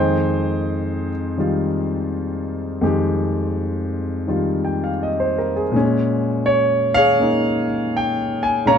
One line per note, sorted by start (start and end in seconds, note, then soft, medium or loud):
0.00 2.80 F2 medium
0.00 1.36 D#3 soft
0.00 2.81 G#3 soft
0.00 1.09 D#4 medium
0.00 1.09 G#4 medium
0.00 1.09 C5 medium
0.00 2.84 G5 medium
1.37 2.80 D#3 soft
1.37 2.84 G3 soft
1.37 2.84 F4 soft
2.81 5.74 F2 medium
2.81 4.26 D#3 soft
2.81 5.72 G#3 soft
2.81 5.75 G4 medium
4.27 5.74 D#3 soft
4.27 5.74 G3 soft
4.27 5.75 F4 soft
4.65 4.88 G5 soft
4.84 5.09 F5 soft
5.03 5.36 D#5 soft
5.20 5.51 C5 medium
5.38 5.61 A#4 soft
5.56 5.82 G#4 medium
5.72 8.64 A#2 medium
5.72 8.64 G#3 medium
5.76 7.19 C#4 medium
6.46 6.57 C#5 medium
6.94 8.38 G#4 medium
6.94 8.38 C#5 medium
6.94 7.64 F5 loud
7.19 8.65 A#3 soft
7.19 8.66 C#4 soft
7.19 8.67 D#4 soft
7.96 8.40 G5 medium
8.43 8.67 G#5 medium
8.66 8.78 A#2 medium
8.66 8.78 G#3 soft
8.66 8.78 C#4 medium
8.66 8.78 C#5 medium
8.66 8.78 F5 medium
8.66 8.78 A#5 medium